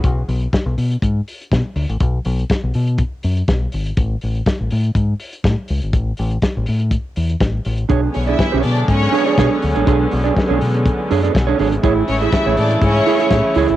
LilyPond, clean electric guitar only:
\new Staff \with { instrumentName = "Clean electric guitar" } { \time 4/4 \key b \dorian \tempo 4 = 122 r1 | r1 | r1 | r1 |
<d' gis' cis''>8 r16 <d' gis' d''>16 r16 <d' gis' cis''>8 r8. <d' gis' cis''>16 <d' gis' d''>16 <d' gis' cis''>8 r16 <d' gis' cis''>16 | <d' gis' cis''>8 r16 <d' gis' d''>16 r16 <d' gis' cis''>8 r8. <d' gis' cis''>16 <d' gis' d''>16 r16 <d' gis' cis''>16 <d' gis' cis''>16 r16 | <e' gis' cis''>8 r16 <e' gis' e''>16 r16 <e' gis' cis''>8 r8. <e' gis' cis''>16 <e' gis' e''>16 r8 <e' gis' cis''>8 | }